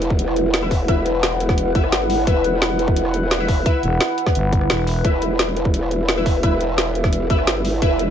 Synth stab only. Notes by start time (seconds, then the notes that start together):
Already playing: E4 B4 E5
0.62 E4 B4 E5
0.88 E4 B4 E5
1.75 E4 B4 E5
2.27 E4 B4 E5
3.40 E4 B4 E5
3.66 E4 B4 E5
5.05 E4 B4 E5
6.17 E4 B4 E5
6.43 E4 B4 E5
7.30 E4 B4 E5
7.82 E4 B4 E5